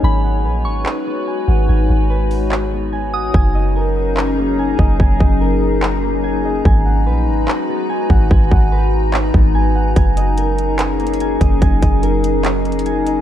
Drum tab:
HH |------------------------|---------o--------------|------------------------|------------------------|
CP |------------x-----------|------------x-----------|------------x-----------|------------x-----------|
BD |------------------------|------------------------|o--------------------o--|o--o--------------------|

HH |------------------------|------------------------|x--x--x--x--x--xxxx--x--|x--x--x--x--x--xxxx--x--|
CP |------------x-----------|------------x-----------|------------x-----------|------------x-----------|
BD |o--------------------o--|o--o-----------o--------|o--------------------o--|o--o--------------------|